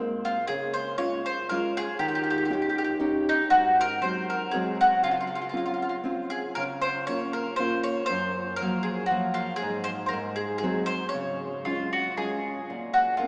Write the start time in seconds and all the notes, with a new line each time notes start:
Already playing: G#3 A#3 C4 C5
0.25 F4
0.48 C#3 G#4
0.74 C5
0.98 G#3 C#4 F4 C#5
1.26 C5
1.49 G#3 C#4 F4 A#4
1.77 G#4
1.99 D#3 G4
2.08 G4
2.15 G4
2.23 G4
2.30 G4
2.38 G4
2.45 G4
2.50 C#4 D#4 G4
2.62 G4
2.70 G4
2.78 G4
2.84 G4
3.00 C#4 D#4 G4
3.29 D#4
3.50 G#2 F#4
3.81 A#4
4.01 F#3 G#3 C4 C5
4.30 A#4
4.51 F#3 G#3 C4 G#4
4.81 F#4
5.03 C#3 F4
5.11 F4
5.21 F4
5.27 F4
5.35 F4
5.42 F4
5.49 C4 F4
5.53 C#4 F4
5.66 F4
5.74 F4
5.82 F4
5.89 F4
6.04 C4 C#4 F4
6.30 G#4
6.55 C#3 A#4
6.82 C5
7.07 A#3 C#4 F4 C#5
7.33 A#4
7.56 A#3 C#4 F4 C5
7.83 C#5
8.06 F#2 C5
8.56 A#4
8.61 F3 F#3 A#3
8.83 G#4
9.06 F#4
9.11 F3 F#3 A#3
9.34 F4
9.56 G#4
9.62 G#2
9.84 C5
10.06 A#4 C5
10.13 G#2
10.36 G#4
10.58 G#4
10.62 F#3 G#3 C4
10.86 C5
11.09 C#5
11.14 C#3
11.65 G#3 C#4 F4
11.93 F#4
12.17 G#3 C#4 F4 G#4
12.70 A#2
12.94 F#4
13.17 A#3 C4 C#4 F4